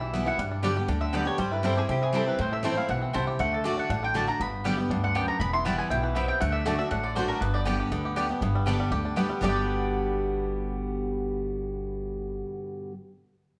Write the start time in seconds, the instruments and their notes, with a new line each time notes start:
Already playing: upright bass B1, steel-string acoustic guitar B2, five-string banjo G3 E4 G4, mandolin E5
0.01 five-string banjo E3
0.14 steel-string acoustic guitar E3 G3 B3 E4, five-string banjo B3
0.26 steel-string acoustic guitar B3 E4, five-string banjo E4, mandolin F#5
0.38 upright bass G2, steel-string acoustic guitar G2, five-string banjo G3
0.51 five-string banjo D4
0.63 steel-string acoustic guitar D3 G3 B3 G4, five-string banjo G3, mandolin B3 G4 D5 G5
0.77 steel-string acoustic guitar B3 G4, five-string banjo G4
0.88 upright bass D2, steel-string acoustic guitar D3, five-string banjo D4
1.01 five-string banjo D3, mandolin E5
1.13 steel-string acoustic guitar D3 G3 B3 G4, mandolin B3 G4 D5 G5, five-string banjo B3
1.25 steel-string acoustic guitar B3 G4, five-string banjo D4, mandolin C#5
1.38 upright bass G2, steel-string acoustic guitar G3, five-string banjo G3, mandolin C5
1.51 five-string banjo E4, mandolin B4
1.63 steel-string acoustic guitar G3 C4 E4, five-string banjo G3, mandolin C4 E4 A4 C5 G5
1.75 steel-string acoustic guitar C4 E4, five-string banjo G4, mandolin G#4
1.89 upright bass C3, steel-string acoustic guitar C4, five-string banjo E4, mandolin G4
2.02 five-string banjo E3, mandolin G#4
2.13 steel-string acoustic guitar G3 C4 E4, mandolin C4 E4 A4 C5 G5, five-string banjo C4
2.27 five-string banjo E4, mandolin B4
2.39 steel-string acoustic guitar A2, upright bass A2, five-string banjo C4, mandolin C5
2.52 five-string banjo A3, mandolin E5
2.63 steel-string acoustic guitar E3 A3 C4 E4, mandolin C4 E4 C5 G5 A5, five-string banjo E4
2.75 five-string banjo C4, steel-string acoustic guitar C4 E4, mandolin F5
2.89 upright bass B1, steel-string acoustic guitar B2, five-string banjo E3, mandolin F#5
3.02 five-string banjo C4
3.13 upright bass C2, steel-string acoustic guitar C3, mandolin C4 E4 C5 A5, five-string banjo E4
3.27 five-string banjo G4
3.39 upright bass D2, steel-string acoustic guitar D3, five-string banjo A3, mandolin F#5
3.52 five-string banjo D4, mandolin A4
3.64 steel-string acoustic guitar D3 A3 D4 F#4, mandolin A3 F#4 D5 A5, five-string banjo A3
3.78 five-string banjo D4, mandolin F#5
3.90 upright bass A1, steel-string acoustic guitar A2, five-string banjo D4, mandolin F#5
4.03 five-string banjo D3, mandolin G5
4.14 steel-string acoustic guitar D3 A3 D4 F#4, mandolin A3 F#4 D5 A5, five-string banjo D4
4.27 five-string banjo D4, steel-string acoustic guitar D4 F#4, mandolin A#5
4.40 upright bass G1, steel-string acoustic guitar G2, five-string banjo B3, mandolin B5
4.64 steel-string acoustic guitar D3 G3 B3 G4, five-string banjo G3, mandolin B3 G4 D5 G5
4.78 five-string banjo B3, steel-string acoustic guitar B3 G4
4.89 upright bass D2, steel-string acoustic guitar G2, five-string banjo D4
5.04 five-string banjo D3, mandolin F#5
5.15 steel-string acoustic guitar F#2, mandolin B3 G4 D5 G5, five-string banjo B3
5.28 five-string banjo D4, mandolin A#5
5.40 upright bass E1, steel-string acoustic guitar E2, five-string banjo B3, mandolin B5
5.53 five-string banjo E4, mandolin C6
5.65 steel-string acoustic guitar E3 G3 B3 E4, five-string banjo G3, mandolin B3 E4 B4 G5 A5
5.78 five-string banjo B3, mandolin G#5
5.90 upright bass B1, steel-string acoustic guitar B2, five-string banjo E4, mandolin G5
6.03 five-string banjo E3, mandolin B4
6.15 steel-string acoustic guitar C3, mandolin B3 E4 B4 E5 G5, five-string banjo B3
6.28 five-string banjo E4, mandolin G5
6.40 upright bass D2, steel-string acoustic guitar D3, five-string banjo A3, mandolin F#5
6.52 five-string banjo D4, mandolin E5
6.65 steel-string acoustic guitar D3 A3 D4 F#4, mandolin A3 F#4 D5 A5, five-string banjo A3
6.79 five-string banjo D4, steel-string acoustic guitar D4 F#4, mandolin E5
6.91 upright bass A1, steel-string acoustic guitar A2, five-string banjo D4, mandolin F#5
7.03 five-string banjo D3, mandolin D5
7.15 steel-string acoustic guitar D3 A3 D4 F#4, mandolin A3 F#4 C5 D5 A5, five-string banjo D4
7.28 five-string banjo D4, mandolin A#4
7.41 upright bass G1, steel-string acoustic guitar G2, five-string banjo B3, mandolin B4
7.54 five-string banjo G4, mandolin D5
7.65 steel-string acoustic guitar D3 G3 B3 G4, mandolin B3 G4 D5 G5, five-string banjo D4
7.80 five-string banjo G4
7.91 upright bass D2, steel-string acoustic guitar D3, five-string banjo B3
8.05 five-string banjo G4
8.16 steel-string acoustic guitar D3 G3 B3 G4, mandolin B3 G4 D5 G5, five-string banjo D4
8.29 five-string banjo B3, steel-string acoustic guitar B3 G4
8.41 upright bass G1, steel-string acoustic guitar G2, five-string banjo B3
8.55 five-string banjo G3
8.66 steel-string acoustic guitar D3 G3 B3 G4, mandolin B3 G4 D5 G5, five-string banjo D4
8.80 five-string banjo G3
8.91 upright bass D2, steel-string acoustic guitar D3, five-string banjo G4
9.05 five-string banjo D4
9.16 steel-string acoustic guitar D3 G3 B3 G4, mandolin B3 G4 D5 G5, five-string banjo B3
9.29 five-string banjo G3, steel-string acoustic guitar B3 G4
9.41 upright bass G1, steel-string acoustic guitar G2 B2 D3 G3 B3 G4, five-string banjo G3 B3, mandolin B3 G4 D5 G5
9.47 five-string banjo D4 G4